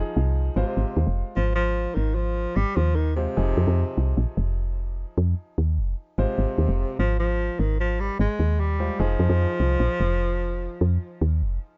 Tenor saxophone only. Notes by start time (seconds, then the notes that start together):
Already playing: F4
0.56 C3
1.36 F3
1.55 F3
1.95 D#3
2.15 F3
2.56 G3
2.75 F3
2.96 D#3
3.16 C3
6.19 C3
6.99 F3
7.19 F3
7.60 D#3
7.80 F3
8.00 G3
8.20 G#3
8.60 G3
9.00 F3